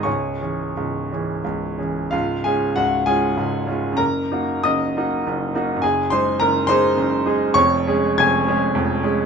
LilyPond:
<<
  \new Staff \with { instrumentName = "Grand piano" } { \time 3/4 \key cis \minor \tempo 4 = 98 <cis'' gis'' cis'''>2 r4 | \key des \major <f' f''>8 <aes' aes''>8 <ges' ges''>8 <aes' aes''>4. | <bes' bes''>4 <ees'' ees'''>4. r8 | <aes' aes''>8 <c'' c'''>8 <bes' bes''>8 <c'' c'''>4. |
<des'' des'''>4 <aes'' aes'''>4. r8 | }
  \new Staff \with { instrumentName = "Grand piano" } { \clef bass \time 3/4 \key cis \minor <cis,, cis,>8 <e cis' gis'>8 <cis,, cis,>8 <e cis' gis'>8 <cis,, cis,>8 <e cis' gis'>8 | \key des \major <des,, des,>8 <aes des' f'>8 <des,, des,>8 <aes des' f'>8 <des,, des,>8 <aes des' f'>8 | <ges,, ges,>8 <bes ees' ges'>8 <ges,, ges,>8 <bes ees' ges'>8 <ges,, ges,>8 <bes ees' ges'>8 | <ges,, ges,>8 <aes ees' aes'>8 <ges,, ges,>8 <aes ees' aes'>8 <ges,, ges,>8 <aes ees' aes'>8 |
<f,, f,>8 <aes des' aes'>8 <f,, f,>8 <aes des' aes'>8 <f,, f,>8 <aes des' aes'>8 | }
>>